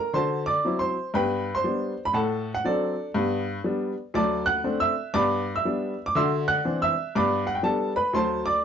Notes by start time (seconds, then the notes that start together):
Already playing: A#4 A#5
0.13 D3 F#4 C5 A5 C6
0.46 D5 D6
0.65 F#3 C4 E4
0.79 C5 C6
1.14 G2 B3 B4 G5 B5
1.55 C5 C6
1.64 G3 B3 D4
2.05 B5
2.13 A2 A4 F#5 A5
2.54 F#5
2.64 F#3 C4 D4 A4 D5
3.14 G2 B3
3.64 G3 B3 D4
4.14 D2 F#3 D5 A5 D6
4.46 F#5 F#6
4.64 A3 C4 D4
4.80 E5 E6
5.14 G2 B3 D5 B5 D6
5.56 E5 E6
5.65 G3 B3 D4
6.06 D6
6.15 D3 F#4 E5 C6 E6
6.48 F#5 F#6
6.65 E3 C4 D4
6.82 E5 E6
7.15 G2 B3 D5 B5 D6
7.47 F#5
7.55 G5
7.63 G3 B3 D4 A4 A5
7.96 B4 B5
8.13 D2 F#3 C5 A5 C6
8.46 D5 D6